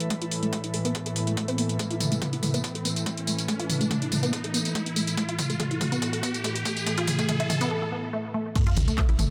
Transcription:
Already playing: synth drone A2 E3, analog synth pad A4 E5 B5, riser
0.00 closed hi-hat
0.10 synth arpeggio sound A3, kick, closed hi-hat
0.22 synth arpeggio sound F4, closed hi-hat
0.31 open hi-hat
0.43 synth arpeggio sound A3, closed hi-hat
0.53 synth arpeggio sound A3, kick, closed hi-hat
0.64 synth arpeggio sound E4, closed hi-hat
0.74 synth arpeggio sound A3, open hi-hat
0.85 synth arpeggio sound B3, closed hi-hat
0.95 synth arpeggio sound A4, kick, closed hi-hat
1.06 synth arpeggio sound A4, closed hi-hat
1.16 synth arpeggio sound A4, open hi-hat
1.27 synth arpeggio sound A3, closed hi-hat
1.37 synth arpeggio sound A3, kick, closed hi-hat
1.48 synth arpeggio sound C4, closed hi-hat
1.58 synth arpeggio sound B3, open hi-hat
1.69 closed hi-hat
1.79 synth arpeggio sound A3, kick, closed hi-hat, tambourine
1.91 synth arpeggio sound F4, closed hi-hat
2.00 open hi-hat, mid tom, tambourine
2.12 synth arpeggio sound A3, closed hi-hat, tambourine
2.22 synth arpeggio sound A3, kick, closed hi-hat, mid tom, tambourine
2.33 synth arpeggio sound E4, closed hi-hat
2.43 synth arpeggio sound A3, open hi-hat, mid tom, tambourine
2.54 synth arpeggio sound B3, closed hi-hat, tambourine
2.64 synth arpeggio sound A4, kick, closed hi-hat, tambourine
2.75 synth arpeggio sound A4, closed hi-hat
2.85 synth arpeggio sound B3, open hi-hat, tambourine
2.96 closed hi-hat, tambourine
3.06 synth arpeggio sound A3, kick, closed hi-hat, tambourine
3.17 closed hi-hat
3.27 synth arpeggio sound A3, open hi-hat, tambourine
3.38 closed hi-hat, tambourine
3.48 synth arpeggio sound A3, kick, closed hi-hat, tambourine
3.60 synth arpeggio sound F4, closed hi-hat
3.70 open hi-hat, mid tom, tambourine
3.81 synth arpeggio sound A3, closed hi-hat, tambourine
3.91 synth arpeggio sound A3, kick, closed hi-hat, mid tom, tambourine
4.02 synth arpeggio sound E4, closed hi-hat
4.12 synth arpeggio sound A3, open hi-hat, mid tom, tambourine
4.23 synth arpeggio sound B3, closed hi-hat, tambourine
4.33 synth arpeggio sound A4, kick, closed hi-hat, tambourine
4.44 synth arpeggio sound A4, closed hi-hat
4.54 synth arpeggio sound B3, open hi-hat, tambourine
4.65 closed hi-hat, tambourine
4.75 synth arpeggio sound A3, kick, closed hi-hat, tambourine
4.86 closed hi-hat
4.96 synth arpeggio sound A3, open hi-hat, tambourine
5.07 closed hi-hat, tambourine
5.17 synth arpeggio sound A3, kick, closed hi-hat, tambourine
5.29 synth arpeggio sound F4, closed hi-hat
5.39 kick, open hi-hat, mid tom, tambourine
5.50 synth arpeggio sound A3, closed hi-hat, tambourine
5.60 synth arpeggio sound A3, kick, closed hi-hat, mid tom, tambourine
5.71 synth arpeggio sound E4, closed hi-hat
5.81 synth arpeggio sound A3, kick, open hi-hat, mid tom, tambourine
5.92 synth arpeggio sound B3, closed hi-hat, tambourine
6.02 synth arpeggio sound A4, kick, closed hi-hat, tambourine
6.13 synth arpeggio sound A4, closed hi-hat
6.23 synth arpeggio sound B3, kick, open hi-hat, tambourine
6.34 closed hi-hat, tambourine
6.44 synth arpeggio sound A3, kick, closed hi-hat, tambourine
6.56 closed hi-hat
6.65 synth arpeggio sound A3, kick, open hi-hat, tambourine
6.77 closed hi-hat, tambourine
6.86 synth arpeggio sound A3, kick, closed hi-hat, tambourine
6.98 synth arpeggio sound F4, kick, closed hi-hat
7.07 kick, open hi-hat, mid tom, tambourine
7.19 synth arpeggio sound A3, kick, closed hi-hat, tambourine
7.29 synth arpeggio sound A3, kick, closed hi-hat, mid tom, tambourine
7.40 synth arpeggio sound E4, kick, closed hi-hat
7.50 synth arpeggio sound A3, kick, open hi-hat, mid tom, tambourine
7.61 synth arpeggio sound B3, kick, closed hi-hat, tambourine
7.71 synth arpeggio sound A4
7.82 synth arpeggio sound A4
7.92 synth arpeggio sound B3
8.13 synth arpeggio sound A3
8.34 synth arpeggio sound A3
8.55 synth drone A2 E3, synth arpeggio sound A3, analog synth pad A4, kick, closed hi-hat, crash, ride, tambourine, sub drop
8.67 synth arpeggio sound F4, closed hi-hat
8.77 analog synth bass A1, analog synth pad E5, open hi-hat, mid tom, tambourine
8.88 synth arpeggio sound A3, closed hi-hat, tambourine
8.98 synth arpeggio sound A3, kick, clap, closed hi-hat, mid tom, ride, tambourine
9.09 analog synth bass A1, synth arpeggio sound E4, closed hi-hat
9.19 analog synth bass A1, synth arpeggio sound A3, open hi-hat, mid tom, tambourine

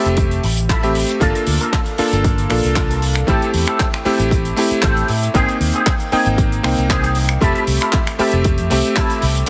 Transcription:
Already playing: electric grand piano A3 C4 G4 E5
0.06 fingered electric bass F1, closed hi-hat
0.17 muted clean electric guitar stroke, kick, closed hi-hat
0.31 closed hi-hat
0.43 fingered electric bass A1, muted clean electric guitar stroke, open hi-hat
0.57 muted clean electric guitar stroke, closed hi-hat
0.69 clean electric guitar E4 F4 A4, kick, clap, closed hi-hat
0.83 electric grand piano A3 C4 G4 E5, closed hi-hat
0.95 open hi-hat
1.09 closed hi-hat
1.20 fingered electric bass G1, electric grand piano A#3 D4 F4 A4, clean electric guitar A#3 F4 A4, kick, closed hi-hat
1.35 closed hi-hat
1.47 fingered electric bass D2, open hi-hat
1.60 clean electric guitar A#3 F4 A4, closed hi-hat
1.73 kick, clap, closed hi-hat
1.86 closed hi-hat
1.98 clean electric guitar A#3 F4 A4, electric grand piano A#3 D4 F4 A4, muted fingered electric bass stroke, open hi-hat
2.13 fingered electric bass G1, closed hi-hat
2.24 muted clean electric guitar stroke, kick, closed hi-hat
2.38 closed hi-hat
2.50 fingered electric bass A#1, electric grand piano A#3 D4 F4 A4, finger snap, muted clean electric guitar stroke, open hi-hat
2.64 fingered electric bass C2, muted clean electric guitar stroke, closed hi-hat
2.75 clean electric guitar A#3 F4 A4, kick, clap, closed hi-hat
2.91 closed hi-hat
3.02 open hi-hat
3.15 finger snap, closed hi-hat
3.27 fingered electric bass A1, electric grand piano A3 C4 E4 G4, clean electric guitar C4 G4 A4, kick, closed hi-hat
3.42 closed hi-hat
3.54 fingered electric bass E2, open hi-hat
3.67 clean electric guitar C4 G4 A4, finger snap, closed hi-hat
3.80 kick, clap, closed hi-hat
3.94 finger snap, closed hi-hat
4.05 electric grand piano A3 C4 E4 G4, clean electric guitar C4 G4 A4, muted fingered electric bass stroke, open hi-hat
4.19 fingered electric bass A1, closed hi-hat
4.31 muted clean electric guitar stroke, kick, closed hi-hat
4.45 closed hi-hat
4.56 electric grand piano A3 C4 E4 G4, muted clean electric guitar stroke, open hi-hat
4.71 muted fingered electric bass stroke, closed hi-hat
4.82 fingered electric bass A1, clean electric guitar C4 G4 A4, kick, clap, closed hi-hat
4.97 closed hi-hat
5.08 fingered electric bass A2, open hi-hat
5.23 closed hi-hat
5.34 fingered electric bass G#1, electric grand piano A#3 C4 D#4 G5, clean electric guitar C4 G4 G#4, kick, closed hi-hat
5.49 closed hi-hat
5.61 fingered electric bass D#2, open hi-hat
5.74 clean electric guitar C4 G4 G#4, closed hi-hat
5.86 kick, clap, closed hi-hat
6.00 closed hi-hat
6.12 electric grand piano A#3 C4 D#4 G5, clean electric guitar C4 G4 G#4, muted fingered electric bass stroke, open hi-hat
6.26 fingered electric bass G#1, closed hi-hat
6.38 muted clean electric guitar stroke, kick, closed hi-hat
6.52 closed hi-hat
6.63 fingered electric bass C2, electric grand piano A#3 C4 D#4 G5, finger snap, muted clean electric guitar stroke, open hi-hat
6.77 fingered electric bass C2, muted clean electric guitar stroke, closed hi-hat
6.89 clean electric guitar C4 G4 G#4, kick, clap, closed hi-hat
7.04 closed hi-hat
7.15 open hi-hat
7.29 finger snap, closed hi-hat
7.41 fingered electric bass F1, electric grand piano A3 C4 G4 E5, clean electric guitar E4 F4 A4, kick, closed hi-hat
7.55 closed hi-hat
7.67 fingered electric bass C2, open hi-hat
7.81 clean electric guitar E4 F4 A4, finger snap, closed hi-hat
7.93 kick, clap, closed hi-hat
8.07 finger snap, closed hi-hat
8.19 electric grand piano A3 C4 G4 E5, clean electric guitar E4 F4 A4, muted fingered electric bass stroke, open hi-hat
8.32 fingered electric bass F1, closed hi-hat
8.44 muted clean electric guitar stroke, kick, closed hi-hat
8.58 fingered electric bass F2, closed hi-hat
8.70 fingered electric bass C2, electric grand piano A3 C4 G4 E5, muted clean electric guitar stroke, open hi-hat
8.84 muted clean electric guitar stroke, closed hi-hat
8.96 clean electric guitar E4 F4 A4, kick, clap, closed hi-hat
9.10 closed hi-hat
9.22 fingered electric bass C2, open hi-hat
9.36 closed hi-hat

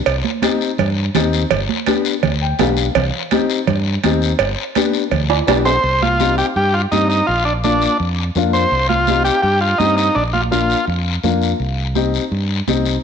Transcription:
0.06 fingered electric bass C2, cowbell, long guiro
0.24 high conga
0.42 upright piano C4 D#4 G4, cowbell, high conga, short guiro
0.61 short guiro
0.78 fingered electric bass G2, cowbell, low conga, long guiro
1.14 fingered electric bass D#2, upright piano C4 D#4 G4, cowbell, high conga, low conga, short guiro
1.33 short guiro
1.51 fingered electric bass G1, cowbell, low conga, long guiro
1.69 high conga
1.86 upright piano B3 D4 G4, cowbell, high conga, short guiro
2.05 short guiro
2.23 fingered electric bass D2, cowbell, low conga, long guiro
2.42 upright piano G5
2.59 fingered electric bass B1, upright piano B3 D4 G4 F5, cowbell, high conga, low conga, low timbale, short guiro
2.77 short guiro
2.95 fingered electric bass C2, cowbell, low conga, long guiro
3.31 upright piano C4 D#4 G4, cowbell, high conga, short guiro
3.50 short guiro
3.67 fingered electric bass G2, cowbell, low conga, long guiro
4.03 fingered electric bass D#2, upright piano C4 D#4 G4, cowbell, high conga, short guiro
4.22 short guiro
4.39 fingered electric bass G1, cowbell, long guiro
4.75 upright piano B3 D4 G4, cowbell, high conga, short guiro
4.94 short guiro
5.11 fingered electric bass D2, cowbell, low conga, long guiro
5.30 high timbale
5.47 fingered electric bass B1, upright piano B3 D4 G4, cowbell, high conga, high timbale, short guiro
5.65 transistor combo organ C5, low timbale, short guiro
5.84 fingered electric bass C2, long guiro
6.02 transistor combo organ F4, high conga
6.20 upright piano C4 D#4 G4, high conga, short guiro
6.38 transistor combo organ G4, short guiro
6.56 fingered electric bass G2, transistor combo organ G4, long guiro
6.74 transistor combo organ F4
6.92 fingered electric bass G2, upright piano C4 D#4 G4, transistor combo organ D#4, high conga, short guiro
7.09 transistor combo organ D#4, short guiro
7.27 fingered electric bass A#1, transistor combo organ F4, long guiro
7.45 transistor combo organ D4
7.64 upright piano A#3 D4 F4, transistor combo organ D4, high conga, short guiro
7.82 short guiro
8.00 fingered electric bass F2, long guiro
8.35 fingered electric bass F2, upright piano A#3 D4 F4, high conga, short guiro
8.53 transistor combo organ C5, short guiro
8.71 fingered electric bass C2, long guiro
8.89 transistor combo organ F4, high conga
9.07 upright piano C4 D#4 G4, high conga, short guiro
9.24 transistor combo organ G4, short guiro
9.42 fingered electric bass G2, transistor combo organ G4, long guiro
9.61 transistor combo organ F4
9.78 fingered electric bass G2, upright piano C4 D#4 G4, transistor combo organ D#4, high conga, short guiro
9.97 transistor combo organ D#4, short guiro
10.15 fingered electric bass A#1, transistor combo organ D4, long guiro
10.33 transistor combo organ F4, high conga
10.51 upright piano A#3 D4 F4, transistor combo organ F4, high conga, short guiro
10.70 short guiro
10.87 fingered electric bass F2, long guiro
11.23 fingered electric bass F2, upright piano A#3 D4 F4, high conga, short guiro
11.42 short guiro
11.60 fingered electric bass C2, long guiro
11.95 upright piano C4 D#4 G4, high conga, short guiro
12.14 short guiro
12.31 fingered electric bass G2, long guiro
12.68 fingered electric bass C2, upright piano C4 D#4 G4, high conga, short guiro
12.85 short guiro

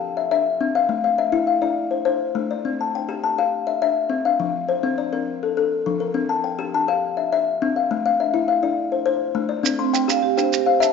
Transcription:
Already playing: kalimba G4 F5 A5
0.17 kalimba E5
0.31 kalimba E5
0.61 kalimba C4
0.75 kalimba F5
0.89 kalimba A3
1.04 kalimba F5
1.18 kalimba E5
1.32 kalimba E4
1.47 kalimba F5
1.62 kalimba E4 D5
1.91 kalimba C5
2.05 kalimba C5
2.35 kalimba A3
2.51 kalimba D5
2.65 kalimba C4
2.81 kalimba A5
2.95 kalimba G5
3.09 kalimba G4
3.24 kalimba A5
3.38 kalimba G4 F5
3.67 kalimba E5
3.82 kalimba E5
4.10 kalimba C4
4.25 kalimba F5
4.40 kalimba F3
4.69 kalimba C5
4.83 kalimba C4
4.98 kalimba D5
5.12 kalimba C4 A#4
5.43 kalimba A4
5.57 kalimba A4
5.86 kalimba F3
6.00 kalimba A#4
6.14 kalimba C4
6.29 kalimba A5
6.44 kalimba G5
6.59 kalimba G4
6.75 kalimba A5
6.88 kalimba G4 F5
7.17 kalimba E5
7.33 kalimba E5
7.62 kalimba C4
7.76 kalimba F5
7.91 kalimba A3
8.06 kalimba F5
8.20 kalimba E5
8.34 kalimba E4
8.48 kalimba F5
8.63 kalimba E4 D5
8.92 kalimba C5
9.06 kalimba C5
9.35 kalimba A3
9.49 kalimba D5
9.63 kalimba C4, maracas
9.79 marimba C4, kalimba C6
9.93 kalimba G5, maracas
10.08 kalimba G4, marimba F5, maracas
10.23 marimba G4
10.37 kalimba G4 G5, marimba C5, maracas
10.53 marimba G4, maracas
10.66 marimba C5, kalimba F5
10.80 kalimba E5, marimba A5, maracas

